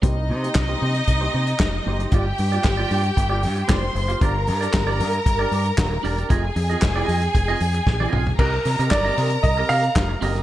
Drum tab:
CC |----------------|----------------|----------------|----------------|
HH |x--xx--xx--xx--x|x-oxx-oxx-oxx-ox|x-oxx-oxx-oxx-ox|x-oxx-oxx-ox----|
CP |----x-------x---|----x-------x---|----x-------x---|----x-----------|
SD |----o-------o---|----o-------o---|----o-------o---|----o-------o---|
T1 |----------------|----------------|----------------|-------------o--|
T2 |----------------|----------------|----------------|--------------o-|
FT |----------------|----------------|----------------|---------------o|
BD |o---o---o---o---|o---o---o---o---|o---o---o---o---|o---o---o---o---|

CC |x---------------|
HH |--oxx-oxx-oxx-ox|
CP |----x-------x---|
SD |--o-o-------o---|
T1 |----------------|
T2 |----------------|
FT |----------------|
BD |o---o---o---o---|